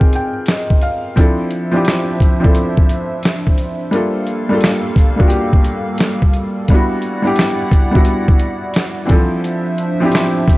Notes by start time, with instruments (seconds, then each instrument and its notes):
Already playing: felt piano G#3 C4 D#4 F4 G4 A#4 G5 G#5
0.01 kick
0.13 felt piano G5, closed hi-hat
0.46 snare, clap, closed hi-hat
0.50 felt piano D#5
0.70 kick
0.81 felt piano F5, closed hi-hat
1.16 felt piano F3 C4 D4 E4, analog synth pad F3 D4 C5 E5, kick, closed hi-hat
1.21 felt piano A4
1.51 closed hi-hat
1.71 felt piano F3 C4 D4 E4
1.76 felt piano G4
1.85 snare, closed hi-hat
1.89 clap
2.20 kick, closed hi-hat
2.40 felt piano F3 C4 D4 E4
2.44 felt piano A4, kick
2.55 closed hi-hat
2.77 kick
2.89 closed hi-hat
3.23 snare, clap, closed hi-hat
3.47 kick
3.58 closed hi-hat
3.91 felt piano G3 A#3 D4 F4, analog synth pad G3 A#3 A4 F5, closed hi-hat
3.96 felt piano A4
4.27 closed hi-hat
4.49 felt piano G3 A#3 D4 F4
4.54 felt piano A4
4.61 snare, closed hi-hat
4.65 clap
4.96 kick, closed hi-hat
5.16 felt piano G3 A#3 D4 F4, kick
5.21 felt piano F#4
5.28 felt piano G4, closed hi-hat
5.53 kick
5.64 closed hi-hat
5.98 snare, clap, closed hi-hat
6.22 kick
6.33 closed hi-hat
6.68 felt piano G3 B3, analog synth pad E4 D5 F#5, kick, closed hi-hat
6.72 felt piano D4 E4 F#4
7.02 closed hi-hat
7.22 felt piano G3 B3 D4 E4
7.27 felt piano G4
7.36 snare, closed hi-hat
7.40 clap
7.71 kick, closed hi-hat
7.91 felt piano G3 B3 D4 E4, kick
7.96 felt piano F#4
8.05 closed hi-hat
8.28 kick
8.39 closed hi-hat
8.74 snare, clap, closed hi-hat
9.05 felt piano E3 C4 D4 E4, closed hi-hat
9.10 analog synth pad F3 D4 C5 E5, felt piano F3 A4, kick
9.44 closed hi-hat
9.78 closed hi-hat
10.00 felt piano F3 C4 D4 E4
10.05 felt piano G4
10.12 snare, closed hi-hat
10.16 clap
10.48 kick, closed hi-hat